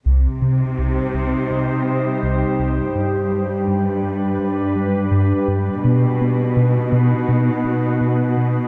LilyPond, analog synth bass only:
\new Staff \with { instrumentName = "Analog synth bass" } { \clef bass \time 4/4 \key c \minor \tempo 4 = 83 c,8 c8 c,8 c,8 c,8 c8 c,8 c,8 | g,8 g8 g,8 g,8 g,8 g8 g,8 g,8 | b,8 b8 b,8 b,8 b,8 b8 b,8 b,8 | }